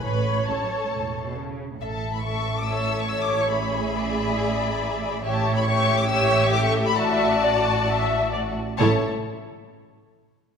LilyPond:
<<
  \new Staff \with { instrumentName = "Violin section" } { \time 4/4 \key a \major \tempo 4 = 136 b''4 a''2 r4 | e''16 a''8 b''16 cis'''8. d'''16 e'''8. cis'''16 e'''16 d'''8 cis'''16 | b''1 | e''16 a''8 b''16 cis'''8. d'''16 e'''8. cis'''16 d'''16 cis'''8 b''16 |
a''1 | a''8 r2. r8 | }
  \new Staff \with { instrumentName = "Viola section" } { \time 4/4 \key a \major cis''2.~ cis''8 r8 | r2 cis''2~ | cis''4 d''2. | cis''2 cis''4 a'4 |
e''4 d''4 e''4 d''8 r8 | e'8 r2. r8 | }
  \new Staff \with { instrumentName = "Violin section" } { \time 4/4 \key a \major b'4 a'2 r4 | <a' e''>4 <a' e''>4 <a' e''>4 <a' e''>4 | <gis' e''>1 | <g' e''>4 <g' e''>4 <g' e''>2 |
<fis' d''>2.~ <fis' d''>8 r8 | <a' cis''>8 r2. r8 | }
  \new Staff \with { instrumentName = "Cello section" } { \clef bass \time 4/4 \key a \major a,4 cis,16 fis,8 gis,16 a,8. b,16 cis8. a,16 | a,1~ | a,1 | a,1~ |
a,2.~ a,8 r8 | a,8 r2. r8 | }
  \new Staff \with { instrumentName = "Double bass section" } { \clef bass \time 4/4 \key a \major a,,4 r4 e,,4 r4 | a,,1~ | a,,1 | a,,1~ |
a,,2.~ a,,8 r8 | a,,8 r2. r8 | }
>>